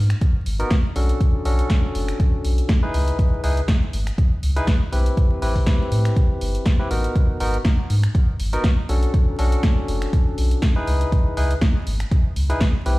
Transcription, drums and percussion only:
0.10 finger snap, closed hi-hat
0.21 kick, closed hi-hat
0.46 open hi-hat
0.60 closed hi-hat
0.70 kick, snare, closed hi-hat
0.96 open hi-hat
1.09 closed hi-hat
1.21 kick, closed hi-hat
1.45 open hi-hat
1.59 closed hi-hat
1.70 kick, snare, closed hi-hat
1.95 open hi-hat
2.08 finger snap, closed hi-hat
2.20 kick, closed hi-hat
2.44 open hi-hat
2.58 closed hi-hat
2.69 kick, snare, closed hi-hat
2.94 open hi-hat
3.08 closed hi-hat
3.19 kick, closed hi-hat
3.44 open hi-hat
3.57 closed hi-hat
3.68 kick, snare, closed hi-hat
3.93 open hi-hat
4.07 finger snap, closed hi-hat
4.18 kick, closed hi-hat
4.43 open hi-hat
4.56 closed hi-hat
4.67 kick, snare, closed hi-hat
4.93 open hi-hat
5.06 closed hi-hat
5.17 kick, closed hi-hat
5.42 open hi-hat
5.56 kick, open hi-hat
5.66 kick, snare, closed hi-hat
5.92 open hi-hat
6.05 finger snap, closed hi-hat
6.16 kick, closed hi-hat
6.41 open hi-hat
6.55 closed hi-hat
6.66 kick, snare, closed hi-hat
6.91 open hi-hat
7.04 closed hi-hat
7.16 kick, closed hi-hat
7.40 open hi-hat
7.54 closed hi-hat
7.65 kick, snare, closed hi-hat
7.90 open hi-hat
8.03 finger snap, closed hi-hat
8.15 kick, closed hi-hat
8.40 open hi-hat
8.53 closed hi-hat
8.64 kick, snare, closed hi-hat
8.89 open hi-hat
9.03 closed hi-hat
9.14 kick, closed hi-hat
9.39 open hi-hat
9.52 closed hi-hat
9.63 kick, snare, closed hi-hat
9.88 open hi-hat
10.02 finger snap, closed hi-hat
10.13 kick, closed hi-hat
10.38 open hi-hat
10.51 closed hi-hat
10.62 kick, snare, closed hi-hat
10.87 open hi-hat
11.01 closed hi-hat
11.12 kick, closed hi-hat
11.37 open hi-hat
11.51 closed hi-hat
11.61 kick, snare, closed hi-hat
11.87 open hi-hat
12.00 finger snap, closed hi-hat
12.11 kick, closed hi-hat
12.36 open hi-hat
12.50 closed hi-hat
12.61 kick, snare, closed hi-hat
12.86 open hi-hat

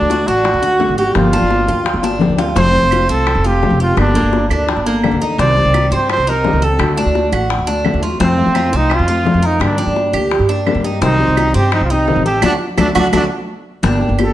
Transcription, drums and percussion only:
0.10 high bongo
0.28 high bongo
0.45 high bongo
0.63 high bongo
0.80 high bongo, low bongo
1.15 high bongo
1.33 high bongo
1.50 high bongo
1.68 high bongo
1.86 high bongo
2.03 high bongo
2.21 low bongo
2.38 low bongo
2.56 high bongo
2.75 high bongo
2.91 high bongo, claves
3.10 high bongo
3.27 high bongo, claves
3.45 high bongo
3.63 high bongo, low bongo
3.97 high bongo, claves
4.16 high bongo
4.33 high bongo
4.50 high bongo, claves
4.69 high bongo
4.86 high bongo
5.04 high bongo, low bongo, claves
5.39 high bongo
5.57 high bongo
5.74 high bongo, claves
5.92 high bongo
6.10 high bongo, claves
6.27 high bongo
6.44 high bongo, low bongo
6.80 high bongo, claves
6.98 high bongo
7.15 high bongo
7.33 high bongo, claves
7.50 high bongo
7.67 high bongo
7.85 high bongo, low bongo, claves
8.21 high bongo
8.39 high bongo
8.55 high bongo, claves
8.74 high bongo
8.90 high bongo, claves
9.10 high bongo
9.26 high bongo, low bongo
9.61 high bongo, claves
9.79 high bongo
9.96 high bongo
10.14 high bongo, claves
10.31 high bongo
10.49 high bongo
10.67 high bongo, low bongo, claves
11.02 high bongo
11.20 high bongo
11.37 high bongo, claves
11.55 high bongo
11.72 high bongo, claves
11.90 high bongo
12.08 high bongo, low bongo
12.42 high bongo, claves
12.78 high bongo, claves
12.95 high bongo, claves
13.13 high bongo, claves
13.84 high bongo
14.01 high bongo
14.19 high bongo, claves

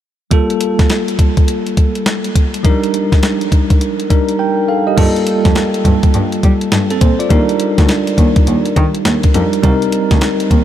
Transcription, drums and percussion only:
0.31 kick, closed hi-hat
0.50 closed hi-hat
0.61 closed hi-hat
0.79 kick, snare, closed hi-hat
0.90 snare, closed hi-hat
1.08 closed hi-hat
1.19 kick, closed hi-hat
1.37 kick, closed hi-hat
1.48 closed hi-hat
1.67 closed hi-hat
1.77 kick, closed hi-hat
1.95 closed hi-hat
2.06 snare, closed hi-hat
2.24 closed hi-hat
2.35 kick, closed hi-hat
2.54 closed hi-hat
2.65 kick, closed hi-hat
2.84 closed hi-hat
2.94 closed hi-hat
3.12 kick, snare, closed hi-hat
3.23 snare, closed hi-hat
3.41 closed hi-hat
3.52 kick, closed hi-hat
3.70 kick, closed hi-hat
3.81 closed hi-hat
4.00 closed hi-hat
4.10 kick, closed hi-hat
4.29 closed hi-hat
4.98 kick, closed hi-hat, crash
5.16 closed hi-hat
5.27 closed hi-hat
5.45 kick, snare, closed hi-hat
5.55 snare, closed hi-hat
5.74 closed hi-hat
5.85 kick, closed hi-hat
6.03 kick, closed hi-hat
6.14 closed hi-hat
6.32 closed hi-hat
6.43 kick, closed hi-hat
6.61 closed hi-hat
6.72 snare, closed hi-hat
6.90 closed hi-hat
7.01 kick, closed hi-hat
7.20 closed hi-hat
7.30 kick, closed hi-hat
7.49 closed hi-hat
7.60 closed hi-hat
7.78 kick, snare, closed hi-hat
7.89 snare, closed hi-hat
8.07 closed hi-hat
8.18 kick, closed hi-hat
8.36 kick, closed hi-hat
8.47 closed hi-hat
8.65 closed hi-hat
8.76 kick, closed hi-hat
8.95 closed hi-hat
9.05 snare, closed hi-hat
9.23 kick, closed hi-hat
9.34 closed hi-hat
9.53 closed hi-hat
9.63 kick, closed hi-hat
9.82 closed hi-hat
9.92 closed hi-hat
10.11 kick, snare, closed hi-hat
10.21 snare, closed hi-hat
10.40 closed hi-hat
10.51 kick, closed hi-hat

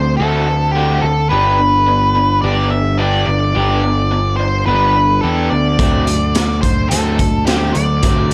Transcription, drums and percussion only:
5.79 kick, closed hi-hat
6.07 closed hi-hat
6.35 snare, closed hi-hat
6.63 kick, closed hi-hat
6.91 closed hi-hat
7.19 kick, closed hi-hat
7.47 snare, closed hi-hat
7.75 closed hi-hat
8.03 kick, closed hi-hat

